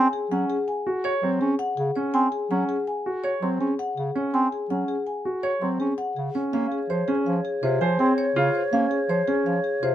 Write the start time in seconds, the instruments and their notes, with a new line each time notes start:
Already playing: marimba G#5
0.13 marimba G#4
0.31 bass clarinet F#3, grand piano C#4, marimba F#5
0.50 marimba G#4
0.68 marimba G#5
0.87 grand piano F#4
1.04 marimba C#5, grand piano C#5
1.23 bass clarinet F#3, grand piano C4
1.41 bass clarinet C#4, marimba G#4
1.59 marimba F#5
1.77 bass clarinet C#3, marimba G#4
1.96 grand piano C#4, marimba C#5
2.14 bass clarinet C4, marimba G#5
2.32 marimba G#4
2.51 bass clarinet F#3, grand piano C#4, marimba F#5
2.69 marimba G#4
2.87 marimba G#5
3.06 grand piano F#4
3.24 marimba C#5, grand piano C#5
3.42 bass clarinet F#3, grand piano C4, marimba C6
3.60 bass clarinet C#4, marimba G#4
3.79 marimba F#5
3.97 bass clarinet C#3, marimba G#4
4.15 grand piano C#4, marimba C#5
4.34 bass clarinet C4, marimba G#5
4.52 marimba G#4
4.70 bass clarinet F#3, grand piano C#4, marimba F#5
4.88 marimba G#4
5.07 marimba G#5
5.25 grand piano F#4
5.43 marimba C#5, grand piano C#5
5.61 bass clarinet F#3, grand piano C4, marimba C6
5.80 bass clarinet C#4, marimba G#4
5.98 marimba F#5
6.16 bass clarinet C#3, marimba G#4
6.35 grand piano C#4, marimba C#5
6.53 bass clarinet A#3, grand piano C#4, alto flute C#5, marimba F5
6.72 marimba G#4
6.90 bass clarinet F3, grand piano C5, marimba C#5
7.08 grand piano C#4, marimba G#4
7.26 bass clarinet F3, marimba F5
7.45 marimba G#4
7.63 bass clarinet C3, grand piano F4, marimba C5
7.81 bass clarinet F3, grand piano C5, marimba G#5
7.99 bass clarinet C4, grand piano C4, marimba G#4
8.18 marimba C#5
8.36 bass clarinet C#3, grand piano F4, marimba G#4
8.55 marimba C5
8.73 bass clarinet A#3, grand piano C#4, marimba F5
8.91 marimba G#4
9.09 bass clarinet F3, grand piano C5, marimba C#5
9.28 grand piano C#4, marimba G#4
9.46 bass clarinet F3, marimba F5
9.64 marimba G#4
9.83 bass clarinet C3, grand piano F4, marimba C5